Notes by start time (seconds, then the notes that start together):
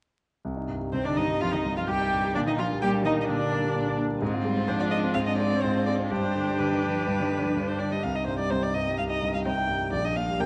0.45 C2
0.57 D#4
0.69 G2
0.80 G3
0.93 C2 C3 C4 C5
1.04 D3 D4 D#4 D5
1.17 G2 D#3 D#4 D#5
1.29 G3
1.40 C2 F3 F4 F5
1.52 D#3 D#4 D#5
1.65 G2
1.76 F3 G3 F4 F5
1.87 C2 G3 G4 G5
2.01 D#4
2.12 G2
2.24 G3
2.35 A#2 D3 D4 D5
2.46 D#3 D4 D#4 D#5
2.58 F3 A#3 F4 F5
2.71 G3
2.81 A#2 G3 G4 G5
2.94 D4
3.05 D#3 A#3 D#4 D#5
3.17 G3
3.21 D#5
3.28 A#2 D3 D4 D5
3.40 D4
3.52 A#3
3.63 G3
3.75 A#2
3.86 D4
3.98 A#3
4.10 G3
4.21 G#2 G#3 C4 F4
4.34 F4
4.44 G3 G#3
4.57 C4
4.68 G#2 F3 D4 C5
4.80 F4 D5
4.91 G#3 D#5
5.04 C4
5.14 G#2 G#3 C4 F5
5.27 D4 D#5
5.38 G#3 D5
5.51 C4
5.62 G#2 G#3 F4 C5
5.75 D4
5.86 G#3 D5
5.99 C4
6.10 G2 G3 D4 G4 C5
6.23 D4
6.35 D3
6.48 G3
6.59 G2 D3 B4
6.71 D#3 D4
6.83 D3 F3
6.95 G3
7.07 G2 G3
7.20 D#3 D4
7.31 D3
7.44 F3 G3
7.56 G2 G3
7.67 D4 C5
7.79 D3 D5
7.91 G3 D#5
8.03 C2 F5
8.15 D#4 D#5
8.27 G2 C5
8.39 G3 D5
8.50 C2 G3 C4 D#4 C5
8.63 D#4 D5
8.74 G2 D#5
8.87 G3
8.98 C2 F5
9.10 D#4 D#5
9.22 G2
9.34 G3 F5
9.45 C2 G3 C4 D#4 G5
9.57 D#4
9.69 G2
9.81 G3
9.92 A#1 D5
10.05 D4 D#5
10.16 A#2 F5
10.28 G3
10.40 A#1 G3 A#3 D4 G5